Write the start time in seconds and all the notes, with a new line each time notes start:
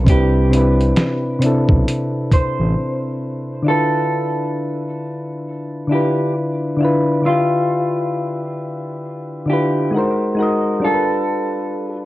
0.04 C2 C3 C4 D4, kick, closed hi-hat
0.10 E4 G4 B4
0.49 C3 C4 D4
0.53 E4 B4, closed hi-hat
0.81 closed hi-hat
0.97 snare, closed hi-hat
1.39 C3 C4 D4, closed hi-hat
1.45 E4 A4
1.69 B1, kick
1.88 closed hi-hat
2.32 C5, kick, closed hi-hat
2.60 A1
3.62 D3 D4 E4
3.68 F4 A4 B4
5.87 D3 D4 E4
5.92 F4 G4 B4
6.77 D3 D4 E4
6.82 F4 B4
7.22 D3 D4 E5
7.26 F4 G4
9.46 D3 D4 E4 G4
9.51 F4 B4
9.91 G#3 D#4 F#4
9.96 A#4 C5
10.35 G#3 D#4
10.39 F#4 A#4 D#5
10.80 G3 D4 F4
10.84 A4 A#4
10.94 B4